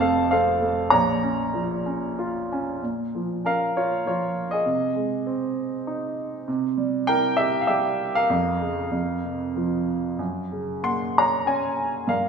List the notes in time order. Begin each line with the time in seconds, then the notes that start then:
Already playing: F1 F2 C3 C5 A5
0.00 A3 A4 F5
0.31 C4 A4 F5
0.61 A3
0.90 A#1 A#2 C#5 A#5
1.23 C#4
1.54 F3
1.86 C#4
2.19 F4
2.52 C#4
2.82 A#2
3.15 F3
3.45 C#4 A#4 F5
3.77 F4 C#5
4.06 F3 F4 C#5
4.51 G#4 D#5
4.65 C3
4.96 G#3
5.27 C4
5.87 D#4
6.48 C3
6.77 G3
7.07 E4 A#4 G5
7.37 G4 E5
7.61 F5
7.67 G3 G4 E5
8.15 A#4 F5
8.30 F2
8.61 C#3
8.91 F2
9.24 C3
9.56 F3
10.19 F#2
10.52 C#3
10.83 A#3 F#5 C6
11.18 C#5 A#5
11.46 C#4 C#5 G#5
12.07 G2 A#4 F5